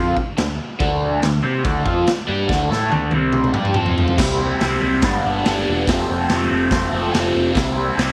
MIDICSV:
0, 0, Header, 1, 6, 480
1, 0, Start_track
1, 0, Tempo, 422535
1, 900, Time_signature, 4, 2, 24, 8
1, 9224, End_track
2, 0, Start_track
2, 0, Title_t, "Overdriven electric guitar"
2, 0, Program_c, 0, 29
2, 0, Note_on_c, 0, 53, 95
2, 0, Note_on_c, 0, 60, 99
2, 0, Note_on_c, 0, 65, 101
2, 149, Note_off_c, 0, 53, 0
2, 154, Note_off_c, 0, 60, 0
2, 156, Note_off_c, 0, 65, 0
2, 422, Note_on_c, 0, 50, 68
2, 431, Note_on_c, 0, 57, 72
2, 613, Note_off_c, 0, 50, 0
2, 617, Note_off_c, 0, 57, 0
2, 900, Note_on_c, 0, 50, 93
2, 917, Note_on_c, 0, 57, 106
2, 920, Note_on_c, 0, 62, 106
2, 1352, Note_off_c, 0, 57, 0
2, 1354, Note_off_c, 0, 50, 0
2, 1366, Note_on_c, 0, 57, 76
2, 1368, Note_on_c, 0, 50, 74
2, 1385, Note_off_c, 0, 62, 0
2, 1567, Note_off_c, 0, 57, 0
2, 1568, Note_off_c, 0, 50, 0
2, 1623, Note_on_c, 0, 60, 91
2, 1633, Note_on_c, 0, 67, 98
2, 1633, Note_on_c, 0, 72, 102
2, 1857, Note_off_c, 0, 60, 0
2, 1857, Note_on_c, 0, 50, 91
2, 1861, Note_off_c, 0, 72, 0
2, 1862, Note_off_c, 0, 67, 0
2, 1862, Note_on_c, 0, 57, 102
2, 1877, Note_on_c, 0, 62, 96
2, 2091, Note_off_c, 0, 50, 0
2, 2096, Note_off_c, 0, 57, 0
2, 2096, Note_on_c, 0, 53, 90
2, 2101, Note_on_c, 0, 60, 91
2, 2104, Note_off_c, 0, 62, 0
2, 2109, Note_on_c, 0, 65, 98
2, 2334, Note_off_c, 0, 53, 0
2, 2336, Note_off_c, 0, 60, 0
2, 2340, Note_off_c, 0, 65, 0
2, 2582, Note_on_c, 0, 55, 101
2, 2594, Note_on_c, 0, 67, 110
2, 2596, Note_on_c, 0, 62, 92
2, 2816, Note_on_c, 0, 50, 96
2, 2817, Note_off_c, 0, 55, 0
2, 2819, Note_off_c, 0, 62, 0
2, 2823, Note_on_c, 0, 57, 97
2, 2824, Note_off_c, 0, 67, 0
2, 2833, Note_on_c, 0, 62, 103
2, 3041, Note_off_c, 0, 57, 0
2, 3054, Note_off_c, 0, 50, 0
2, 3054, Note_on_c, 0, 57, 84
2, 3063, Note_off_c, 0, 62, 0
2, 3076, Note_on_c, 0, 69, 102
2, 3079, Note_on_c, 0, 64, 86
2, 3291, Note_off_c, 0, 57, 0
2, 3295, Note_on_c, 0, 50, 96
2, 3305, Note_off_c, 0, 69, 0
2, 3305, Note_on_c, 0, 57, 111
2, 3306, Note_off_c, 0, 64, 0
2, 3315, Note_on_c, 0, 62, 103
2, 3534, Note_off_c, 0, 50, 0
2, 3539, Note_off_c, 0, 57, 0
2, 3544, Note_off_c, 0, 62, 0
2, 3566, Note_on_c, 0, 48, 104
2, 3568, Note_on_c, 0, 55, 92
2, 3583, Note_on_c, 0, 60, 105
2, 4001, Note_off_c, 0, 55, 0
2, 4010, Note_off_c, 0, 60, 0
2, 4014, Note_on_c, 0, 55, 83
2, 4015, Note_on_c, 0, 62, 85
2, 4030, Note_off_c, 0, 48, 0
2, 4033, Note_on_c, 0, 67, 102
2, 4254, Note_off_c, 0, 55, 0
2, 4254, Note_off_c, 0, 62, 0
2, 4259, Note_on_c, 0, 53, 92
2, 4264, Note_off_c, 0, 67, 0
2, 4264, Note_on_c, 0, 60, 92
2, 4284, Note_on_c, 0, 65, 88
2, 4729, Note_off_c, 0, 53, 0
2, 4733, Note_on_c, 0, 48, 104
2, 4739, Note_off_c, 0, 60, 0
2, 4747, Note_on_c, 0, 55, 107
2, 4748, Note_off_c, 0, 65, 0
2, 4753, Note_on_c, 0, 60, 105
2, 4762, Note_on_c, 0, 64, 105
2, 4970, Note_off_c, 0, 64, 0
2, 4984, Note_on_c, 0, 64, 71
2, 4994, Note_off_c, 0, 60, 0
2, 5005, Note_off_c, 0, 55, 0
2, 5008, Note_on_c, 0, 60, 64
2, 5018, Note_on_c, 0, 55, 56
2, 5211, Note_off_c, 0, 48, 0
2, 5224, Note_on_c, 0, 48, 89
2, 5228, Note_off_c, 0, 55, 0
2, 5236, Note_off_c, 0, 60, 0
2, 5242, Note_on_c, 0, 55, 88
2, 5247, Note_off_c, 0, 64, 0
2, 5249, Note_on_c, 0, 60, 81
2, 5261, Note_on_c, 0, 64, 91
2, 5444, Note_off_c, 0, 64, 0
2, 5458, Note_on_c, 0, 64, 88
2, 5467, Note_off_c, 0, 60, 0
2, 5481, Note_on_c, 0, 60, 77
2, 5493, Note_off_c, 0, 55, 0
2, 5507, Note_on_c, 0, 55, 63
2, 5688, Note_off_c, 0, 64, 0
2, 5691, Note_off_c, 0, 48, 0
2, 5700, Note_off_c, 0, 60, 0
2, 5706, Note_on_c, 0, 43, 90
2, 5713, Note_off_c, 0, 55, 0
2, 5724, Note_on_c, 0, 50, 89
2, 5725, Note_on_c, 0, 59, 101
2, 5733, Note_on_c, 0, 55, 101
2, 5738, Note_on_c, 0, 62, 97
2, 5939, Note_off_c, 0, 62, 0
2, 5953, Note_on_c, 0, 62, 71
2, 5959, Note_off_c, 0, 59, 0
2, 5973, Note_on_c, 0, 59, 75
2, 5975, Note_off_c, 0, 55, 0
2, 5989, Note_on_c, 0, 55, 61
2, 6162, Note_off_c, 0, 43, 0
2, 6176, Note_on_c, 0, 43, 99
2, 6180, Note_off_c, 0, 50, 0
2, 6183, Note_off_c, 0, 55, 0
2, 6184, Note_off_c, 0, 59, 0
2, 6193, Note_on_c, 0, 50, 99
2, 6197, Note_on_c, 0, 55, 94
2, 6198, Note_on_c, 0, 59, 106
2, 6207, Note_off_c, 0, 62, 0
2, 6221, Note_on_c, 0, 62, 100
2, 6646, Note_off_c, 0, 43, 0
2, 6654, Note_off_c, 0, 50, 0
2, 6656, Note_off_c, 0, 55, 0
2, 6657, Note_off_c, 0, 59, 0
2, 6668, Note_off_c, 0, 62, 0
2, 6680, Note_on_c, 0, 41, 98
2, 6683, Note_on_c, 0, 48, 102
2, 6695, Note_on_c, 0, 53, 96
2, 6703, Note_on_c, 0, 60, 107
2, 6709, Note_on_c, 0, 57, 102
2, 6909, Note_off_c, 0, 60, 0
2, 6922, Note_on_c, 0, 60, 76
2, 6933, Note_off_c, 0, 57, 0
2, 6947, Note_on_c, 0, 57, 63
2, 6953, Note_off_c, 0, 53, 0
2, 6967, Note_on_c, 0, 53, 63
2, 7134, Note_off_c, 0, 48, 0
2, 7148, Note_off_c, 0, 53, 0
2, 7148, Note_on_c, 0, 48, 91
2, 7151, Note_off_c, 0, 41, 0
2, 7162, Note_on_c, 0, 53, 86
2, 7164, Note_off_c, 0, 57, 0
2, 7175, Note_off_c, 0, 60, 0
2, 7178, Note_on_c, 0, 57, 90
2, 7188, Note_on_c, 0, 60, 90
2, 7369, Note_off_c, 0, 60, 0
2, 7382, Note_on_c, 0, 60, 82
2, 7398, Note_off_c, 0, 57, 0
2, 7407, Note_off_c, 0, 53, 0
2, 7412, Note_on_c, 0, 57, 77
2, 7420, Note_on_c, 0, 53, 63
2, 7625, Note_off_c, 0, 48, 0
2, 7841, Note_off_c, 0, 60, 0
2, 7854, Note_on_c, 0, 60, 71
2, 7864, Note_off_c, 0, 57, 0
2, 7875, Note_off_c, 0, 53, 0
2, 7877, Note_on_c, 0, 57, 65
2, 7889, Note_on_c, 0, 53, 60
2, 8072, Note_on_c, 0, 41, 99
2, 8080, Note_off_c, 0, 53, 0
2, 8093, Note_on_c, 0, 53, 98
2, 8096, Note_off_c, 0, 57, 0
2, 8101, Note_on_c, 0, 48, 95
2, 8104, Note_off_c, 0, 60, 0
2, 8110, Note_on_c, 0, 57, 96
2, 8117, Note_on_c, 0, 60, 102
2, 8535, Note_off_c, 0, 48, 0
2, 8547, Note_off_c, 0, 60, 0
2, 8549, Note_off_c, 0, 53, 0
2, 8549, Note_on_c, 0, 48, 103
2, 8551, Note_off_c, 0, 41, 0
2, 8554, Note_on_c, 0, 55, 91
2, 8556, Note_off_c, 0, 57, 0
2, 8561, Note_on_c, 0, 60, 95
2, 8575, Note_on_c, 0, 64, 109
2, 8777, Note_off_c, 0, 64, 0
2, 8791, Note_on_c, 0, 64, 74
2, 8795, Note_off_c, 0, 60, 0
2, 8809, Note_on_c, 0, 60, 71
2, 8814, Note_off_c, 0, 55, 0
2, 8827, Note_on_c, 0, 55, 61
2, 9022, Note_off_c, 0, 48, 0
2, 9031, Note_off_c, 0, 55, 0
2, 9036, Note_on_c, 0, 48, 85
2, 9037, Note_off_c, 0, 60, 0
2, 9045, Note_on_c, 0, 55, 82
2, 9051, Note_on_c, 0, 60, 85
2, 9057, Note_off_c, 0, 64, 0
2, 9071, Note_on_c, 0, 64, 96
2, 9224, Note_off_c, 0, 48, 0
2, 9224, Note_off_c, 0, 55, 0
2, 9224, Note_off_c, 0, 60, 0
2, 9224, Note_off_c, 0, 64, 0
2, 9224, End_track
3, 0, Start_track
3, 0, Title_t, "Picked electric bass"
3, 0, Program_c, 1, 34
3, 0, Note_on_c, 1, 41, 94
3, 172, Note_off_c, 1, 41, 0
3, 439, Note_on_c, 1, 38, 84
3, 654, Note_off_c, 1, 38, 0
3, 910, Note_on_c, 1, 38, 97
3, 1354, Note_off_c, 1, 38, 0
3, 1403, Note_on_c, 1, 38, 81
3, 1617, Note_off_c, 1, 38, 0
3, 1633, Note_on_c, 1, 48, 102
3, 1852, Note_off_c, 1, 48, 0
3, 1880, Note_on_c, 1, 38, 96
3, 2096, Note_off_c, 1, 38, 0
3, 2117, Note_on_c, 1, 41, 97
3, 2335, Note_off_c, 1, 41, 0
3, 2598, Note_on_c, 1, 43, 99
3, 2816, Note_off_c, 1, 43, 0
3, 2836, Note_on_c, 1, 38, 98
3, 3056, Note_off_c, 1, 38, 0
3, 3071, Note_on_c, 1, 45, 96
3, 3293, Note_off_c, 1, 45, 0
3, 3320, Note_on_c, 1, 38, 94
3, 3538, Note_off_c, 1, 38, 0
3, 3547, Note_on_c, 1, 36, 100
3, 3994, Note_off_c, 1, 36, 0
3, 4037, Note_on_c, 1, 43, 96
3, 4256, Note_off_c, 1, 43, 0
3, 4280, Note_on_c, 1, 41, 98
3, 4721, Note_off_c, 1, 41, 0
3, 4753, Note_on_c, 1, 36, 105
3, 5134, Note_off_c, 1, 36, 0
3, 5243, Note_on_c, 1, 36, 92
3, 5428, Note_off_c, 1, 36, 0
3, 5480, Note_on_c, 1, 36, 88
3, 5667, Note_off_c, 1, 36, 0
3, 5711, Note_on_c, 1, 31, 95
3, 5901, Note_off_c, 1, 31, 0
3, 5968, Note_on_c, 1, 31, 94
3, 6151, Note_off_c, 1, 31, 0
3, 6215, Note_on_c, 1, 31, 89
3, 6395, Note_off_c, 1, 31, 0
3, 6453, Note_on_c, 1, 28, 94
3, 6634, Note_off_c, 1, 28, 0
3, 6687, Note_on_c, 1, 29, 103
3, 6870, Note_off_c, 1, 29, 0
3, 6930, Note_on_c, 1, 29, 94
3, 7111, Note_off_c, 1, 29, 0
3, 7152, Note_on_c, 1, 29, 91
3, 7340, Note_off_c, 1, 29, 0
3, 7401, Note_on_c, 1, 29, 91
3, 7586, Note_off_c, 1, 29, 0
3, 7629, Note_on_c, 1, 29, 91
3, 7818, Note_off_c, 1, 29, 0
3, 7866, Note_on_c, 1, 29, 88
3, 8056, Note_off_c, 1, 29, 0
3, 8109, Note_on_c, 1, 29, 99
3, 8297, Note_off_c, 1, 29, 0
3, 8348, Note_on_c, 1, 29, 99
3, 8536, Note_off_c, 1, 29, 0
3, 8582, Note_on_c, 1, 36, 107
3, 8964, Note_off_c, 1, 36, 0
3, 9060, Note_on_c, 1, 36, 96
3, 9224, Note_off_c, 1, 36, 0
3, 9224, End_track
4, 0, Start_track
4, 0, Title_t, "Muted overdriven electric guitar strokes"
4, 192, Note_on_c, 9, 29, 60
4, 306, Note_off_c, 9, 29, 0
4, 2350, Note_on_c, 9, 29, 59
4, 2463, Note_off_c, 9, 29, 0
4, 9224, End_track
5, 0, Start_track
5, 0, Title_t, "Muted picked electric bass strokes"
5, 198, Note_on_c, 9, 29, 42
5, 311, Note_off_c, 9, 29, 0
5, 2366, Note_on_c, 9, 29, 40
5, 2480, Note_off_c, 9, 29, 0
5, 9224, End_track
6, 0, Start_track
6, 0, Title_t, "Drums"
6, 189, Note_on_c, 9, 36, 87
6, 302, Note_off_c, 9, 36, 0
6, 425, Note_on_c, 9, 49, 67
6, 436, Note_on_c, 9, 38, 117
6, 538, Note_off_c, 9, 49, 0
6, 550, Note_off_c, 9, 38, 0
6, 910, Note_on_c, 9, 49, 62
6, 911, Note_on_c, 9, 36, 121
6, 1024, Note_off_c, 9, 49, 0
6, 1025, Note_off_c, 9, 36, 0
6, 1388, Note_on_c, 9, 49, 57
6, 1399, Note_on_c, 9, 38, 111
6, 1501, Note_off_c, 9, 49, 0
6, 1512, Note_off_c, 9, 38, 0
6, 1872, Note_on_c, 9, 36, 125
6, 1873, Note_on_c, 9, 49, 65
6, 1985, Note_off_c, 9, 36, 0
6, 1987, Note_off_c, 9, 49, 0
6, 2109, Note_on_c, 9, 36, 95
6, 2222, Note_off_c, 9, 36, 0
6, 2347, Note_on_c, 9, 49, 63
6, 2359, Note_on_c, 9, 38, 118
6, 2461, Note_off_c, 9, 49, 0
6, 2472, Note_off_c, 9, 38, 0
6, 2830, Note_on_c, 9, 36, 118
6, 2855, Note_on_c, 9, 38, 69
6, 2943, Note_off_c, 9, 36, 0
6, 2969, Note_off_c, 9, 38, 0
6, 3091, Note_on_c, 9, 38, 71
6, 3205, Note_off_c, 9, 38, 0
6, 3313, Note_on_c, 9, 48, 76
6, 3427, Note_off_c, 9, 48, 0
6, 3534, Note_on_c, 9, 48, 81
6, 3648, Note_off_c, 9, 48, 0
6, 3777, Note_on_c, 9, 47, 95
6, 3891, Note_off_c, 9, 47, 0
6, 3906, Note_on_c, 9, 47, 82
6, 4018, Note_on_c, 9, 45, 97
6, 4020, Note_off_c, 9, 47, 0
6, 4132, Note_off_c, 9, 45, 0
6, 4146, Note_on_c, 9, 45, 81
6, 4252, Note_off_c, 9, 45, 0
6, 4252, Note_on_c, 9, 45, 103
6, 4366, Note_off_c, 9, 45, 0
6, 4383, Note_on_c, 9, 43, 90
6, 4497, Note_off_c, 9, 43, 0
6, 4518, Note_on_c, 9, 43, 114
6, 4631, Note_off_c, 9, 43, 0
6, 4631, Note_on_c, 9, 43, 100
6, 4745, Note_off_c, 9, 43, 0
6, 4751, Note_on_c, 9, 36, 123
6, 4754, Note_on_c, 9, 57, 125
6, 4765, Note_on_c, 9, 38, 123
6, 4865, Note_off_c, 9, 36, 0
6, 4867, Note_off_c, 9, 57, 0
6, 4879, Note_off_c, 9, 38, 0
6, 5227, Note_on_c, 9, 46, 67
6, 5238, Note_on_c, 9, 38, 109
6, 5341, Note_off_c, 9, 46, 0
6, 5352, Note_off_c, 9, 38, 0
6, 5698, Note_on_c, 9, 46, 67
6, 5707, Note_on_c, 9, 36, 125
6, 5710, Note_on_c, 9, 38, 124
6, 5812, Note_off_c, 9, 46, 0
6, 5821, Note_off_c, 9, 36, 0
6, 5823, Note_off_c, 9, 38, 0
6, 6190, Note_on_c, 9, 46, 73
6, 6201, Note_on_c, 9, 38, 122
6, 6303, Note_off_c, 9, 46, 0
6, 6315, Note_off_c, 9, 38, 0
6, 6674, Note_on_c, 9, 36, 119
6, 6678, Note_on_c, 9, 46, 74
6, 6689, Note_on_c, 9, 38, 123
6, 6787, Note_off_c, 9, 36, 0
6, 6791, Note_off_c, 9, 46, 0
6, 6803, Note_off_c, 9, 38, 0
6, 7142, Note_on_c, 9, 46, 71
6, 7154, Note_on_c, 9, 38, 122
6, 7256, Note_off_c, 9, 46, 0
6, 7267, Note_off_c, 9, 38, 0
6, 7622, Note_on_c, 9, 36, 119
6, 7625, Note_on_c, 9, 46, 71
6, 7636, Note_on_c, 9, 38, 124
6, 7736, Note_off_c, 9, 36, 0
6, 7738, Note_off_c, 9, 46, 0
6, 7750, Note_off_c, 9, 38, 0
6, 8108, Note_on_c, 9, 46, 74
6, 8119, Note_on_c, 9, 38, 119
6, 8221, Note_off_c, 9, 46, 0
6, 8232, Note_off_c, 9, 38, 0
6, 8580, Note_on_c, 9, 36, 116
6, 8588, Note_on_c, 9, 46, 68
6, 8599, Note_on_c, 9, 38, 125
6, 8694, Note_off_c, 9, 36, 0
6, 8702, Note_off_c, 9, 46, 0
6, 8713, Note_off_c, 9, 38, 0
6, 9067, Note_on_c, 9, 46, 67
6, 9078, Note_on_c, 9, 38, 121
6, 9180, Note_off_c, 9, 46, 0
6, 9191, Note_off_c, 9, 38, 0
6, 9224, End_track
0, 0, End_of_file